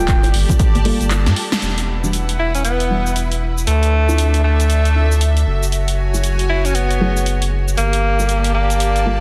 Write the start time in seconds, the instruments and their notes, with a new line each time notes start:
Already playing: string section G4 D5, soft synth lead G5
0.00 analog synth bass D1, synth stab G3 A#3 F4 A4
0.08 kick, clap, closed hi-hat, cabasa
0.22 string section A5, closed hi-hat, high bongo, cabasa
0.34 analog synth bass G1, open hi-hat
0.49 kick, closed hi-hat, low conga, cabasa
0.59 kick, closed hi-hat, high bongo, cabasa
0.75 analog synth bass G1, closed hi-hat, high conga, cabasa
0.85 synth stab G3 A#3 F4 A4, open hi-hat
1.00 analog synth bass G1, closed hi-hat, high conga, cabasa
1.11 clap, closed hi-hat, high bongo, cabasa
1.26 analog synth bass G2, snare, closed hi-hat, cabasa
1.36 open hi-hat
1.52 snare, closed hi-hat, high bongo, cabasa
1.62 analog synth bass E1, string section E4, closed hi-hat, cabasa
1.78 closed hi-hat, cabasa
1.85 string section F#5
1.97 string section B4
2.03 synth stab E3 G3 D4 F#4, cabasa
2.13 closed hi-hat, cabasa
2.29 closed hi-hat, cabasa
2.39 tenor saxophone E4
2.55 tenor saxophone C#4, closed hi-hat, cabasa
2.65 tenor saxophone B3, closed hi-hat, cabasa
2.80 closed hi-hat, cabasa
2.90 synth stab E3 G3 D4 F#4
3.07 cabasa
3.16 closed hi-hat, cabasa
3.32 closed hi-hat, cabasa
3.58 cabasa
3.67 analog synth bass D2, tenor saxophone A3, string section D4, closed hi-hat, cabasa
3.83 string section A4, closed hi-hat, cabasa
4.04 string section E5
4.08 synth stab C4 D4 E4 F4, cabasa
4.18 closed hi-hat, cabasa
4.34 closed hi-hat, cabasa
4.44 tenor saxophone A3
4.60 closed hi-hat, cabasa
4.70 closed hi-hat, cabasa
4.85 closed hi-hat, cabasa
4.95 synth stab C4 D4 E4 F4
5.12 cabasa
5.21 closed hi-hat, cabasa
5.37 closed hi-hat, cabasa
5.47 analog synth bass F#1, string section F#4
5.63 cabasa
5.72 string section C#5, closed hi-hat, cabasa
5.88 closed hi-hat, cabasa
5.95 string section G#5
6.13 synth stab F#3 A3 E4 G#4, cabasa
6.24 closed hi-hat, cabasa
6.39 closed hi-hat, cabasa
6.49 tenor saxophone E4
6.65 tenor saxophone C#4, closed hi-hat, cabasa
6.75 tenor saxophone B3, closed hi-hat, cabasa
6.91 closed hi-hat, cabasa
7.00 synth stab F#3 A3 E4 G#4
7.17 cabasa
7.26 closed hi-hat, cabasa
7.42 closed hi-hat, cabasa
7.68 cabasa
7.77 analog synth bass G1, tenor saxophone A#3, string section G4, closed hi-hat, cabasa
7.93 closed hi-hat, cabasa
8.02 string section D5
8.19 synth stab G3 A#3 F4 A4, cabasa
8.29 closed hi-hat, cabasa
8.38 string section A5
8.44 closed hi-hat, cabasa
8.54 tenor saxophone A#3
8.70 closed hi-hat, cabasa
8.80 closed hi-hat, cabasa
8.96 closed hi-hat, cabasa
9.06 synth stab G3 A#3 F4 A4